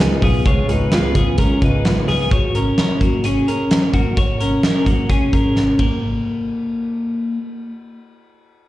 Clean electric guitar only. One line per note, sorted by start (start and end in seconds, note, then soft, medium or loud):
0.00 0.21 D#4 soft
0.00 0.20 B4 medium
0.23 0.46 B3 medium
0.23 0.46 G#4 medium
0.46 0.70 F4 medium
0.46 0.69 C#5 medium
0.70 0.93 D#4 medium
0.70 0.91 B4 medium
0.93 1.16 F4 medium
0.93 1.15 B4 medium
1.15 1.39 B3 medium
1.15 1.38 G#4 medium
1.39 1.62 C#4 medium
1.39 1.62 A#4 medium
1.62 2.06 D#4 soft
1.62 2.05 B4 medium
2.08 2.32 B3 medium
2.08 2.31 G#4 medium
2.32 2.55 F#4 medium
2.32 2.55 C#5 medium
2.55 2.78 C#4 medium
2.55 2.77 A#4 medium
2.79 3.02 C#4 medium
2.79 3.01 A#4 medium
3.02 3.25 A#3 soft
3.02 3.24 F#4 medium
3.25 3.48 C#4 medium
3.25 3.47 G#4 medium
3.48 3.92 C#4 soft
3.48 3.91 A#4 medium
3.94 4.17 A#3 medium
3.94 4.17 F#4 medium
4.17 4.41 F#4 medium
4.17 4.40 C#5 medium
4.40 4.63 C#4 soft
4.40 4.62 A#4 medium
4.64 4.87 C#4 soft
4.64 4.87 A#4 medium
4.87 5.10 A#3 medium
4.87 5.09 F#4 medium
5.10 5.33 C#4 medium
5.10 5.33 G#4 medium
5.33 5.77 C#4 soft
5.33 5.77 A#4 medium
5.79 7.38 A#3 medium